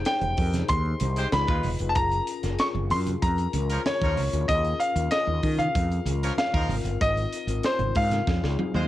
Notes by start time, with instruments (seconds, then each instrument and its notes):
Already playing: tine electric piano D#4 G4 G#4 C5
0.05 grand piano G5, snare, closed hi-hat
0.21 fretless electric bass F1, closed hi-hat, high conga
0.37 fretless electric bass F2, tine electric piano D#4 G4 G#4 A#4, kick, open hi-hat
0.53 snare, closed hi-hat, high conga, low conga
0.68 fretless electric bass D#2, grand piano C6, kick, closed hi-hat
0.85 muted conga
1.00 fretless electric bass C2, tine electric piano D#4 G4 G#4 C5, closed hi-hat, high conga
1.16 horn section G#3 G4 C5, closed hi-hat
1.32 fretless electric bass C#2, tine electric piano D#4 F4 G#4 B4, grand piano B5, snare, closed hi-hat, muted conga, high conga
1.48 fretless electric bass D#2, horn section G#3 F4 B4, kick, muted conga
1.63 fretless electric bass E1, open hi-hat, high conga, low conga
1.79 fretless electric bass F1, tine electric piano D#4 F4 G#4 B4, closed hi-hat
1.89 grand piano A5
1.95 fretless electric bass F#1, tine electric piano C#4 F4 G#4 A#4, grand piano A#5, kick, closed hi-hat, muted conga
2.12 closed hi-hat, muted conga
2.27 closed hi-hat
2.43 fretless electric bass F#1, tine electric piano C#4 F4 G#4 A#4, snare, closed hi-hat
2.59 grand piano C#6, snare, closed hi-hat, muted conga
2.74 fretless electric bass F#1, muted conga, high conga
2.90 fretless electric bass F#2, tine electric piano C#4 F4 G#4 A#4, grand piano C6, open hi-hat
3.07 closed hi-hat, high conga, low conga
3.22 fretless electric bass F2, grand piano A#5, kick, closed hi-hat
3.38 closed hi-hat
3.53 fretless electric bass C#2, tine electric piano C#4 F4 G#4 A#4, closed hi-hat, high conga
3.70 horn section F3 C#4 A#4, closed hi-hat
3.86 grand piano C#5, snare, closed hi-hat, high conga
4.01 fretless electric bass D#2, horn section F3 C#4 A#4, kick, closed hi-hat, muted conga
4.17 fretless electric bass C#2, open hi-hat, high conga, low conga
4.33 fretless electric bass D2, tine electric piano C#4 F4 G#4 A#4, closed hi-hat
4.48 fretless electric bass D#2, tine electric piano C#4 F4 G#4 A#4, grand piano D#5, kick, closed hi-hat, muted conga
4.65 closed hi-hat, muted conga
4.80 grand piano F5, closed hi-hat
4.96 fretless electric bass D#2, tine electric piano C#4 F4 G#4 A#4, closed hi-hat
5.11 grand piano D#5, snare, closed hi-hat, muted conga
5.27 fretless electric bass D#2, high conga
5.43 fretless electric bass D#3, tine electric piano C#4 F4 G#4 A#4, kick, open hi-hat
5.59 grand piano F5, closed hi-hat, high conga, low conga
5.75 fretless electric bass F2, kick, closed hi-hat
5.90 closed hi-hat, muted conga
6.05 fretless electric bass C#2, tine electric piano C#4 F4 G#4 A#4, closed hi-hat, high conga
6.22 horn section F3 C#4 A#4, closed hi-hat
6.37 grand piano F5, snare, closed hi-hat, high conga
6.53 fretless electric bass D#2, horn section F3 D#4 A#4, kick, closed hi-hat
6.68 fretless electric bass G#1, tine electric piano C4 D#4 F4 A#4, open hi-hat, high conga, low conga
6.84 fretless electric bass G1, closed hi-hat
7.01 fretless electric bass G#1, grand piano D#5, kick, closed hi-hat, muted conga
7.16 closed hi-hat, muted conga
7.33 closed hi-hat
7.47 fretless electric bass G#1, tine electric piano C4 D#4 F4 A#4, closed hi-hat
7.63 grand piano C5, snare, closed hi-hat
7.79 fretless electric bass G#1, closed hi-hat, high conga, low conga
7.95 fretless electric bass G#2, tine electric piano C4 D#4 F4 A#4, grand piano F5, kick, open hi-hat
8.11 snare, closed hi-hat, high conga, low conga
8.27 fretless electric bass F2, tine electric piano C4 D#4 F4 G#4, kick, snare
8.43 fretless electric bass C#2, snare
8.58 tine electric piano C4 D#4 F4 F#4, high tom, high conga
8.66 tine electric piano G#4
8.74 fretless electric bass D#2, horn section G#3 F4 C5, high tom